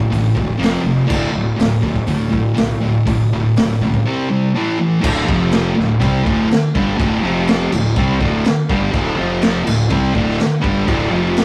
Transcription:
0.00 kick
0.10 fingered electric bass A1, distorted electric guitar D2 A2, kick, open hi-hat
0.35 fingered electric bass E1, distorted electric guitar D2 A2, kick
0.58 fingered electric bass F1, distorted electric guitar F2 C3 F3
0.63 snare, open hi-hat
0.82 fingered electric bass F1, distorted electric guitar F2 C3
1.06 fingered electric bass D1, distorted electric guitar D2 A2 D3, kick, crash
1.32 fingered electric bass D1, distorted electric guitar D2 A2
1.56 fingered electric bass D1, distorted electric guitar D2 A2, open hi-hat
1.61 snare
1.81 fingered electric bass D1, distorted electric guitar D2 A2, kick
1.96 kick
2.07 distorted electric guitar D2 A2, fingered electric bass D2, kick, open hi-hat
2.29 distorted electric guitar D2 A2, kick
2.54 distorted electric guitar D2 A2, snare, open hi-hat
2.59 fingered electric bass B1
2.81 fingered electric bass D1, distorted electric guitar D2 A2
3.05 fingered electric bass D1, distorted electric guitar D2 A2, kick, open hi-hat
3.32 fingered electric bass D1, distorted electric guitar D2 A2
3.56 fingered electric bass D1, distorted electric guitar D2 A2, snare, open hi-hat
3.71 snare
3.81 fingered electric bass C#2, distorted electric guitar D2 A2, kick
3.94 kick
4.05 distorted electric guitar C3 G3 C4
4.29 distorted electric guitar C3 G3
4.54 distorted electric guitar A2 E3 A3
4.78 distorted electric guitar A2 E3
5.01 fingered electric bass D1, distorted electric guitar D2 A2 D3, kick, crash
5.25 fingered electric bass F1, distorted electric guitar F2 C3 F3, kick
5.51 snare, crash
5.76 fingered electric bass D1, distorted electric guitar D2 A2, snare
6.00 fingered electric bass C2, distorted electric guitar C3 G3 C4, kick, crash
6.25 fingered electric bass D1, distorted electric guitar D2 A2 D3, kick
6.51 snare, crash
6.75 fingered electric bass G1, distorted electric guitar G2 D3 G3, kick
6.96 fingered electric bass D1, distorted electric guitar D2 A2 D3, kick
7.01 crash
7.22 fingered electric bass F1, distorted electric guitar F2 C3 F3
7.47 snare, crash
7.72 fingered electric bass D1, distorted electric guitar D2 A2, crash
7.96 fingered electric bass C2, distorted electric guitar C3 G3 C4, kick, crash
8.19 fingered electric bass D1, distorted electric guitar D2 A2 D3, kick
8.45 snare, crash
8.69 fingered electric bass G1, distorted electric guitar G2 D3 G3, kick
8.92 fingered electric bass D1, distorted electric guitar D2 A2 D3, kick, crash
9.17 fingered electric bass F1, distorted electric guitar F2 C3 F3
9.42 snare, crash
9.65 fingered electric bass D1, distorted electric guitar D2 A2, snare, crash
9.89 fingered electric bass C2, distorted electric guitar C3 G3 C4, kick, crash
10.14 fingered electric bass D1, distorted electric guitar D2 A2 D3, kick
10.29 snare
10.40 snare, crash
10.61 fingered electric bass G1, distorted electric guitar G2 D3 G3, kick
10.86 fingered electric bass D1, distorted electric guitar D2 A2 D3, kick, crash
11.09 fingered electric bass F1, distorted electric guitar F2 C3 F3
11.36 snare, crash

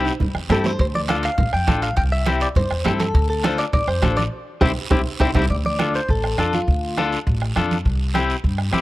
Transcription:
Already playing: clean electric guitar C4 E4 G4
0.05 high timbale, short guiro
0.20 upright bass G2, bombo low, high conga, low conga, long guiro
0.35 upright bass E2, bombo rim
0.49 upright bass G2, clean electric guitar C4 E4 G4 A4, bombo rim, high conga, low timbale, short guiro
0.64 clean electric guitar C5, high conga, low timbale, short guiro
0.79 upright bass D2, clean electric guitar C5, bombo low, high conga, high timbale, long guiro
0.95 clean electric guitar D5, high conga
1.08 clean electric guitar D4 F4 A4 F5, bombo rim, high conga, high timbale, short guiro
1.23 clean electric guitar F5, high timbale, short guiro
1.38 upright bass A1, bombo low, high conga, low conga, high timbale, long guiro
1.53 upright bass F2, clean electric guitar G5, bombo rim
1.67 upright bass A1, clean electric guitar D4 F4 A4, bombo low, bombo rim, high conga, high timbale, short guiro
1.82 clean electric guitar F5, high timbale, short guiro
1.96 upright bass C2, clean electric guitar G5, bombo low, high conga, high timbale, long guiro
2.12 clean electric guitar E5
2.26 clean electric guitar C4 E4 G4, bombo rim, high conga, high timbale, short guiro
2.40 clean electric guitar D5, high timbale, short guiro
2.55 upright bass G2, clean electric guitar C5, bombo low, high conga, low conga, high timbale, long guiro
2.71 upright bass E2, bombo rim
2.84 upright bass G2, clean electric guitar C4 E4 G4 A4, bombo rim, high conga, low conga, high timbale, low timbale, short guiro
3.00 clean electric guitar A4, high conga, high timbale, short guiro
3.14 upright bass D2, bombo low, high conga, high timbale, long guiro
3.30 clean electric guitar A4
3.43 clean electric guitar D4 F4 A4 C5, bombo rim, high conga, high timbale, short guiro
3.58 clean electric guitar D5, high timbale, short guiro
3.73 upright bass A1, clean electric guitar D5, bombo low, high conga, low conga, high timbale, long guiro
3.87 upright bass F2, clean electric guitar C5, bombo rim
4.02 upright bass A1, clean electric guitar D4 F4 A4, bombo low, bombo rim, high conga, high timbale, low timbale, short guiro
4.17 clean electric guitar D5, high conga, high timbale, short guiro
4.61 upright bass C2, clean electric guitar C4 E4 G4 C5 E5, bombo low, low conga, high timbale, long guiro
4.90 upright bass C2, clean electric guitar C4 E4 G4 C5 E5, bombo low, low conga, high timbale, long guiro
5.20 upright bass C2, clean electric guitar C4 E4 G4 C5 E5, bombo low, low conga, high timbale, long guiro
5.34 upright bass C2, clean electric guitar C4 E4 G4 C5 E5, bombo low, low conga, high timbale, long guiro
5.50 upright bass D2, clean electric guitar D5, bombo low, high conga, long guiro
5.65 clean electric guitar D5, high conga
5.79 clean electric guitar D4 F4 A4, bombo rim, high conga, short guiro
5.94 clean electric guitar C5, short guiro
6.08 upright bass A1, clean electric guitar A4, bombo low, high conga, long guiro
6.24 bombo rim
6.38 upright bass F2, clean electric guitar D4 F4 A4, bombo rim, high conga, short guiro
6.53 clean electric guitar F4, high conga, short guiro
6.68 upright bass D2, bombo low, high conga, long guiro
6.97 clean electric guitar D4 F4 A4, bombo rim, high conga, short guiro
7.12 short guiro
7.27 upright bass A1, bombo low, high conga, long guiro
7.42 bombo rim
7.56 upright bass F2, clean electric guitar D4 F4 A4, bombo rim, high conga, short guiro
7.71 high conga, short guiro
7.85 upright bass C2, bombo low, high conga, long guiro
8.14 clean electric guitar C4 E4 G4, bombo rim, high conga, short guiro
8.30 short guiro
8.44 upright bass G2, bombo low, high conga, long guiro
8.58 bombo rim
8.72 upright bass E2, clean electric guitar C4 E4 G4, bombo rim, high conga, short guiro

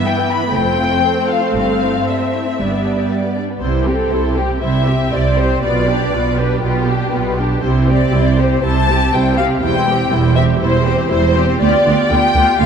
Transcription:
Already playing: viola section E3 B3, violin section E5
0.04 violin section G3 G5
0.16 violin section B3
0.28 violin section E4 B5
0.40 violin section B3
0.52 double bass section F1, cello section F2, violin section A3 C5 G5, viola section A3 C4
0.64 violin section C4
0.78 violin section F4
0.91 violin section C4
1.03 violin section A3
1.15 violin section C4
1.28 violin section F4 F5
1.41 violin section C4
1.55 double bass section G1, cello section G2, violin section G3 F5
1.67 violin section C4
1.81 violin section E4
1.95 violin section C4
2.08 violin section G3 E5
2.20 violin section C4
2.33 violin section E4
2.45 violin section C4
2.57 double bass section G1, cello section G2, violin section G3 D5, viola section G3 B3
2.71 violin section B3
2.84 violin section D4
2.97 violin section B3
3.09 violin section G3
3.23 violin section B3
3.36 violin section D4
3.49 violin section B3
3.61 double bass section C2, cello section C3, viola section G3 E4, violin section C5
3.86 viola section C4 G4, violin section G4 A4
4.11 double bass section C2, cello section C3, viola section G3 E4, violin section C5
4.35 viola section C4 G4, violin section G4
4.60 double bass section C2, cello section C3, viola section G3 E4, violin section C5 E5
4.84 violin section G4, viola section G4
4.88 viola section C4
5.11 double bass section C2, cello section C3, viola section G3 E4, violin section C5 D5
5.36 viola section C4 G4, violin section G4 C5
5.62 double bass section B1, cello section B2, viola section B3 F4, violin section B4 D5
5.87 viola section D4 G4, violin section G4
6.11 double bass section B1, cello section B2, viola section B3 F4, violin section B4
6.37 viola section D4 G4, violin section G4 B4
6.61 double bass section B1, cello section B2, viola section B3 F4, violin section G4 B4
6.86 viola section D4 G4, violin section G4
7.12 double bass section B1, cello section B2, viola section B3 F4, violin section B4
7.37 viola section D4 G4, violin section G4
7.62 double bass section C2, cello section C3, viola section G3 E4, violin section C5
7.88 viola section C4 G4, violin section G4 D5
8.12 double bass section C2, cello section C3, viola section G3 E4, violin section C5
8.38 viola section C4 G4, violin section G4 C5
8.62 double bass section C2, cello section C3, viola section G3 E4, violin section C5 A5
8.88 viola section C4 G4, violin section G4
9.12 double bass section C2, cello section C3, viola section G3 E4, violin section C5 G5
9.36 viola section C4 G4, violin section G4 F5
9.61 double bass section E1, cello section E2, viola section G3 E4, violin section C5 G5
9.86 viola section C4 G4, violin section G4
10.11 double bass section E1, cello section E2, viola section G3 E4, violin section C5
10.35 viola section C4 G4, violin section G4 E5
10.59 double bass section E1, cello section E2, viola section G3 E4, violin section C5
10.85 viola section C4 G4, violin section G4
11.09 double bass section E1, cello section E2, viola section G3 E4, violin section C5
11.35 viola section C4 G4, violin section G4
11.60 cello section D2, double bass section D2, viola section B3 F4, violin section G4 D5
11.85 cello section D2, double bass section D2, viola section B3 F4, violin section G4
12.08 cello section D2, double bass section D2, viola section B3 F4, violin section G4 G5
12.34 cello section D2, double bass section D2, viola section B3 F4, violin section G4
12.59 cello section D2, double bass section D2, viola section B3 F4, violin section G4 F5

